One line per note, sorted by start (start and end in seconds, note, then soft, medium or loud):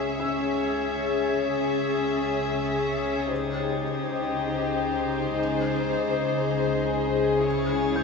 0.00 5.33 C#2 soft
0.00 5.34 C#3 medium
0.00 3.26 C#4 medium
0.00 3.26 G#4 medium
0.00 3.27 G#4 medium
0.00 3.26 C#5 medium
0.00 3.26 E5 medium
0.00 6.90 G#6 soft
0.20 3.27 E6 soft
0.20 6.90 A6 soft
1.24 5.49 D#6 soft
3.28 7.41 D#4 soft
3.28 5.36 G4 soft
3.28 7.44 C5 medium
3.28 7.41 C5 soft
3.28 7.44 D#5 soft
3.32 5.35 G4 soft
5.37 8.03 C#2 soft
5.37 8.03 C#3 medium
5.37 8.03 G#4 medium
5.49 6.90 D6 soft
7.44 8.03 E4 soft
7.44 8.03 C#5 medium
7.44 8.03 E5 medium
7.44 8.03 G#6 soft
7.44 8.03 A6 soft
7.96 8.03 G6 soft